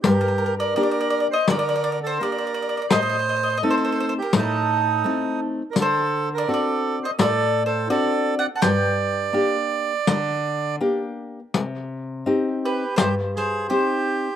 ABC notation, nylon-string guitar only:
X:1
M:4/4
L:1/8
Q:"Swing" 1/4=84
K:Gm
V:1 name="Nylon-string guitar"
G,,2 [B,DG]2 D,2 [B,DG]2 | A,,2 [A,CE]2 A,,2 [A,CE]2 | D,2 [CD^F]2 A,,2 [CDF]2 | G,,2 [B,DG]2 D,2 [B,DG]2 |
[K:Cm] C,2 [CEG]2 G,,2 [CEG]2 |]